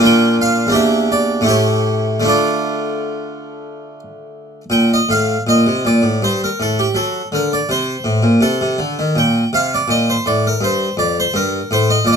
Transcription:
0.00 0.69 A#2 medium
0.00 0.67 A#3 soft
0.00 0.69 D4 soft
0.00 0.72 F4 soft
0.05 0.34 G5 loud
0.41 0.71 F5 medium
0.67 1.43 E2 soft
0.67 1.44 A#3 soft
0.67 1.45 D4 soft
0.72 1.45 G4 soft
0.72 1.12 E5 medium
1.12 1.44 D5 medium
1.41 2.22 A2 medium
1.41 2.19 A3 soft
1.41 2.24 E4 soft
1.47 2.25 G4 soft
1.47 2.29 C#5 medium
2.20 4.61 D3 soft
2.20 4.61 A3 soft
2.20 4.63 D4 soft
2.25 4.64 F4 soft
2.25 4.00 D5 medium
4.70 4.97 A#2 soft
4.70 4.90 G5 medium
4.94 5.10 D#5 medium
5.09 5.35 A2 soft
5.09 5.41 F5 medium
5.47 5.64 A#2 soft
5.47 5.84 D#5 medium
5.67 5.83 C3 soft
5.85 6.01 A#2 soft
5.85 6.22 D5 medium
6.02 6.19 A2 soft
6.22 6.48 G2 soft
6.22 6.40 C5 medium
6.44 6.59 A#4 medium
6.60 6.85 A2 medium
6.60 6.78 A4 medium
6.79 6.95 G4 medium
6.95 7.21 F#3 soft
6.95 7.26 A4 medium
7.32 7.58 D3 soft
7.32 7.51 A#4 medium
7.53 7.69 D5 medium
7.69 7.95 C3 soft
7.69 8.32 C5 medium
8.04 8.22 A2 medium
8.23 8.40 A#2 medium
8.41 8.58 C3 medium
8.41 9.16 A4 medium
8.61 8.78 C3 medium
8.78 8.96 D3 medium
8.99 9.16 D#3 medium
9.15 9.42 A#2 medium
9.15 9.49 G5 medium
9.53 9.79 C3 medium
9.53 9.72 F5 medium
9.74 9.91 D5 medium
9.88 10.14 A#2 medium
9.88 10.08 D#5 medium
10.10 10.27 C5 medium
10.26 10.52 A2 medium
10.26 10.45 D5 medium
10.47 10.64 A#4 medium
10.61 10.87 G2 medium
10.61 10.94 C5 medium
10.97 11.23 F2 medium
10.97 11.17 D5 medium
11.20 11.36 C5 medium
11.34 11.60 G2 medium
11.34 11.70 A#4 medium
11.71 11.96 A2 medium
11.71 11.89 C5 medium
11.90 12.06 D#5 medium
12.05 12.16 A#2 soft
12.05 12.12 D5 medium
12.13 12.16 D#5 medium

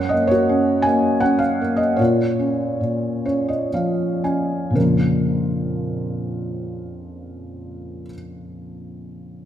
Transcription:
0.00 1.96 F#2 medium
0.00 0.30 A#4 medium
0.00 0.26 C#5 medium
0.00 0.12 F#5 medium
0.09 0.85 A#3 medium
0.09 0.30 D#5 medium
0.27 1.38 F#4 medium
0.27 1.38 A#4 medium
0.27 0.86 C#5 medium
0.49 1.22 C#4 medium
0.82 1.60 A#3 medium
0.82 1.23 G#5 medium
1.20 1.98 C#4 medium
1.20 1.41 F#5 medium
1.39 1.80 F5 medium
1.61 1.99 A#3 medium
1.77 1.99 D#5 medium
1.96 2.79 A#2 medium
1.96 3.69 F4 soft
1.96 3.69 A#4 soft
1.96 3.24 C#5 medium
2.39 3.24 C#4 soft
2.81 4.72 A#2 medium
3.25 4.23 C#4 soft
3.25 3.47 C#5 medium
3.48 3.71 D#5 medium
3.74 4.73 F3 soft
3.74 4.21 F5 medium
4.24 4.75 C#4 soft
4.24 4.72 G#5 medium
4.71 8.01 A#1 soft
4.71 8.04 F2 soft
4.75 8.06 C#3 soft
4.75 8.08 F3 soft
4.75 8.06 A#4 medium
4.79 8.10 A#3 soft
4.79 8.13 F4 medium

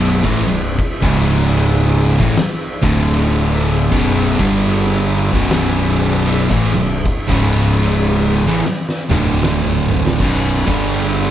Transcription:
0.00 0.20 B0 medium
0.00 0.22 B1 loud
0.00 0.23 F#2 loud
0.00 0.23 B2 loud
0.00 ride loud
0.24 0.46 A1 loud
0.24 0.46 A2 medium
0.24 0.46 E3 loud
0.24 kick loud
0.47 0.76 B0 medium
0.47 0.72 B1 medium
0.47 0.72 F#2 medium
0.47 ride medium
0.79 kick loud
0.79 ride loud
1.01 2.16 C#1 medium
1.01 2.18 C#2 medium
1.01 2.19 G#2 medium
1.01 2.19 C#3 loud
1.01 kick loud
1.26 ride medium
1.57 ride loud
2.05 snare soft
2.05 ride medium
2.20 2.34 A1 medium
2.20 2.34 A2 loud
2.20 2.35 E3 loud
2.20 kick loud
2.35 snare loud
2.35 ride loud
2.83 3.88 D1 medium
2.83 3.90 D2 medium
2.83 3.91 A2 loud
2.83 3.92 D3 loud
2.83 kick loud
2.83 ride medium
3.14 ride loud
3.61 ride medium
3.91 4.36 B0 loud
3.91 4.37 B1 medium
3.91 4.38 F#2 loud
3.91 4.38 B2 loud
3.91 kick loud
3.91 ride loud
4.38 5.29 G1 loud
4.38 5.32 G2 medium
4.38 5.32 D3 loud
4.38 5.32 G3 loud
4.38 kick loud
4.38 ride medium
4.70 ride loud
5.18 ride medium
5.33 6.47 B0 medium
5.33 6.50 B1 loud
5.33 6.50 F#2 loud
5.33 6.50 B2 loud
5.33 kick loud
5.49 snare loud
5.49 ride loud
5.96 ride medium
6.27 ride loud
6.51 6.73 A1 loud
6.51 6.73 A2 loud
6.51 6.74 E3 loud
6.51 kick loud
6.74 7.03 B0 medium
6.74 7.00 B1 medium
6.74 7.00 F#2 medium
6.74 ride medium
7.05 kick loud
7.05 ride loud
7.29 8.43 C#1 medium
7.29 8.46 C#2 medium
7.29 8.47 G#2 loud
7.29 8.47 C#3 loud
7.29 kick loud
7.53 ride medium
7.84 ride loud
8.31 snare soft
8.31 ride medium
8.47 8.61 A1 medium
8.47 8.62 A2 medium
8.47 8.62 E3 loud
8.65 snare medium
8.89 snare medium
9.09 10.16 D1 loud
9.09 10.18 D2 medium
9.09 10.19 A2 medium
9.09 10.19 D3 loud
9.09 mid tom medium
9.26 mid tom medium
9.43 snare medium
9.65 mid tom medium
9.88 floor tom loud
10.07 snare medium
10.20 10.64 B0 loud
10.20 10.66 B1 medium
10.20 10.66 F#2 loud
10.20 10.66 B2 loud
10.20 kick loud
10.20 crash loud
10.67 11.31 G1 loud
10.67 11.31 G2 loud
10.67 11.31 D3 medium
10.67 11.31 G3 loud
10.67 kick loud
10.67 ride medium
10.99 ride loud

